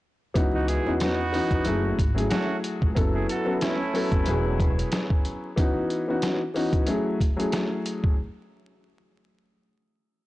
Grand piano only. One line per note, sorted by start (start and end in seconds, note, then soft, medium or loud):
0.34 0.81 E3 loud
0.34 0.81 B3 medium
0.34 0.82 C#4 medium
0.34 0.82 D#4 medium
0.34 0.82 F#4 loud
0.86 1.16 E3 medium
0.86 1.16 B3 medium
0.86 1.16 C#4 medium
0.86 1.17 D#4 medium
0.86 1.17 F#4 loud
1.32 1.66 E3 medium
1.32 1.66 B3 medium
1.32 1.64 C#4 medium
1.32 1.66 D#4 medium
1.32 1.67 F#4 loud
1.65 1.96 F#3 loud
1.65 1.96 A3 medium
1.65 1.96 C#4 medium
1.65 1.97 E4 medium
1.65 1.97 G#4 loud
2.15 2.90 F#3 medium
2.15 2.90 A3 medium
2.15 2.90 C#4 medium
2.15 2.91 E4 medium
2.15 2.91 G#4 loud
2.95 3.42 F#3 loud
2.95 3.42 B3 medium
2.95 3.42 C#4 medium
2.95 3.43 E4 medium
2.95 3.43 A4 loud
3.45 3.76 F#3 medium
3.45 3.76 B3 medium
3.45 3.76 C#4 medium
3.45 3.77 E4 loud
3.45 3.77 A4 loud
3.93 4.24 F#3 medium
3.93 4.24 B3 medium
3.93 4.25 C#4 medium
3.93 4.25 E4 medium
3.93 4.25 A4 loud
4.26 5.47 F#3 loud
4.26 5.48 B3 medium
4.26 5.48 C#4 medium
4.26 5.48 E4 medium
4.26 5.49 G#4 loud
5.56 6.03 E3 loud
5.56 6.03 B3 medium
5.56 6.04 C#4 medium
5.56 6.04 D#4 medium
5.56 6.04 F#4 loud
6.08 6.38 E3 loud
6.08 6.38 B3 medium
6.08 6.38 C#4 medium
6.08 6.39 D#4 medium
6.08 6.39 F#4 loud
6.54 6.87 E3 medium
6.54 6.88 B3 medium
6.54 6.86 C#4 medium
6.54 6.88 D#4 medium
6.54 6.89 F#4 loud
6.86 7.17 F#3 loud
6.86 7.18 A3 medium
6.86 7.18 C#4 medium
6.86 7.18 E4 medium
6.86 7.19 G#4 loud
7.36 8.11 F#3 medium
7.36 8.12 A3 medium
7.36 8.12 C#4 medium
7.36 8.12 E4 medium
7.36 8.13 G#4 loud